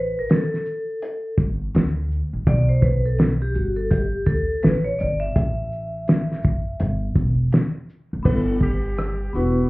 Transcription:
Already playing: upright bass A1, vibraphone B4
0.19 vibraphone A#4
0.29 vibraphone A4, snare, closed hi-hat
0.54 snare
0.65 shaker
1.02 closed hi-hat
1.38 upright bass G1, kick, shaker
1.75 upright bass D2, snare, closed hi-hat
2.11 shaker
2.33 upright bass A1
2.47 upright bass B1, vibraphone D5, kick, closed hi-hat
2.69 vibraphone C5
2.82 vibraphone B4, kick, closed hi-hat, shaker
3.05 vibraphone A4
3.18 snare, closed hi-hat
3.42 vibraphone G4
3.54 upright bass G1, vibraphone F#4, shaker
3.76 vibraphone A4
3.91 vibraphone G4, kick, closed hi-hat
4.26 upright bass D2, vibraphone A4, kick, shaker
4.63 upright bass A1, vibraphone B4, snare, closed hi-hat
4.84 vibraphone C#5
4.99 upright bass G1, vibraphone D5, closed hi-hat, shaker
5.20 vibraphone E5
5.36 upright bass A1, kick, closed hi-hat
5.72 shaker
6.08 snare, closed hi-hat
6.32 snare
6.43 upright bass F#1, kick, shaker
6.80 upright bass G1, closed hi-hat
7.16 upright bass E1, kick, shaker
7.52 snare, closed hi-hat
7.89 shaker
8.13 upright bass F#1
8.23 upright bass G1, vibraphone B3 D4 E4 A4, alto saxophone B4, kick, crash
8.61 alto saxophone G4, kick, closed hi-hat, shaker
8.97 cross-stick, closed hi-hat
9.33 upright bass E1, vibraphone B3 D4 E4 B4, alto saxophone F#4, shaker

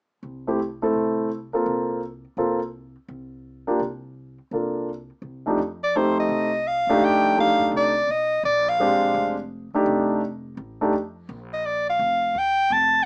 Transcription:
0.23 upright bass C2
0.47 grand piano A3 C4 E4 G4
0.82 grand piano A3 C4 E4 A4
0.93 upright bass C2
1.53 grand piano A#3 C4 F4 A4
1.66 upright bass C2
2.37 upright bass C2, grand piano A#3 C4 F4 A4
3.08 upright bass C2
3.67 grand piano A#3 D4 F4 G4
3.79 upright bass C2
4.51 upright bass C2, grand piano A#3 D4 F4 A4
5.22 upright bass C2
5.46 grand piano F2 A3 D4 D#4 G4
5.58 upright bass F2
5.83 soprano saxophone D5
5.95 grand piano A3 C4 D#4 G4, soprano saxophone C5
6.20 soprano saxophone D#5
6.29 upright bass C2
6.67 soprano saxophone F5
6.87 upright bass E2, grand piano A3 D4 D#4 G4
6.99 upright bass F2
7.04 soprano saxophone G5
7.37 grand piano A3 D4 D#4 G4, soprano saxophone F5
7.59 upright bass F#2
7.72 upright bass C2
7.77 soprano saxophone D5
8.07 upright bass B1, soprano saxophone D#5
8.43 upright bass A#1, soprano saxophone D5
8.69 soprano saxophone F5
8.80 grand piano G#3 C4 D4 G4
9.14 upright bass F1
9.74 grand piano A3 D4 D#4 G4, muted upright bass stroke
9.86 upright bass F1
10.57 upright bass A1
10.81 grand piano A3 D4 D#4 G4
10.93 upright bass F2
11.29 upright bass A#1
11.53 soprano saxophone D#5
11.65 soprano saxophone D5
11.90 soprano saxophone F5
11.99 upright bass F1
12.35 upright bass D#2, soprano saxophone G5
12.70 upright bass F1, soprano saxophone A5

